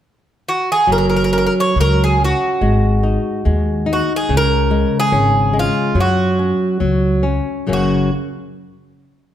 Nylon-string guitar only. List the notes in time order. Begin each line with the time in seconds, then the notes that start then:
0.87 F#3
1.32 C#4
1.77 F#3
2.20 C#4
2.62 G#3
3.03 D#4
3.45 G#3
3.86 D#4
4.29 C#3
4.71 G#3
5.12 C#4
5.53 G#3
5.95 F#3
6.39 C#4
6.80 F#3
7.23 C#4
7.67 F#2 C#3 F#3 A#3 C#4